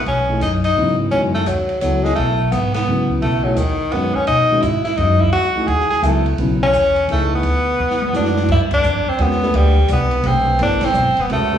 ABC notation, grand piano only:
X:1
M:3/4
L:1/8
Q:"Swing" 1/4=171
K:Bmix
V:1 name="Grand piano"
z [E,A,DG] z2 [C,F,B,E]2 | [D,G,CF] z3 [F,B,EA]2- | [F,B,EA] z3 [C,F,B,E]2- | [C,F,B,E] [E,A,DG] z2 [D,G,CF] z |
z [D,G,CF] z2 [D,G,CF] z | z [E,A,DG] z2 [F,B,EA] z | [C,F,B,E] z3 [E,A,DG]2 | z4 [E,A,=DF]2 |
[K:C] z4 [_A,^C^F_B] [=A,DG=B]- | [A,DGB] z3 [A,DGB]2 | [B,EAc] z3 [_A,^C^F_B] [=A,DG=B] |]